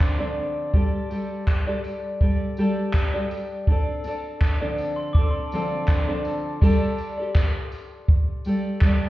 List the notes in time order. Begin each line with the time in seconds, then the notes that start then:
Already playing: D3 F3 C4 D4 A4 D5 C6
0.00 kick, clap
0.19 D3 F3 C4 D4 A4 D5
0.73 G3 G4 A4 D5, kick
1.10 G3 G4 A4 D5, tambourine
1.47 kick, clap
1.67 G3 G4 A4 D5
1.84 tambourine
2.21 G3 G4 A4 D5, kick
2.57 G3 G4 A4 D5, tambourine
2.93 kick, clap
3.14 G3 G4 A4 D5
3.31 tambourine
3.67 C4 D4 A4, kick
3.72 D5
4.04 C4 D4 A4, tambourine
4.09 D5
4.41 kick, clap
4.61 D3 F3 C4 D4 A4 D5
4.78 tambourine
4.96 C6
5.13 D4 D6, kick
5.18 C4 A4 D5
5.31 C6
5.52 D3 F3 C4 D4 A4 D5, tambourine
5.88 kick, clap
6.08 D3 F3 C4 D4 A4 D5
6.25 tambourine
6.61 G3 G4 A4 D5, kick, crash
6.98 tambourine
7.17 A4 D5
7.21 G4
7.35 kick, clap
7.72 tambourine
8.08 kick
8.45 G3 G4 A4, tambourine
8.49 D5
8.81 G3 G4 A4, kick, clap
8.86 D5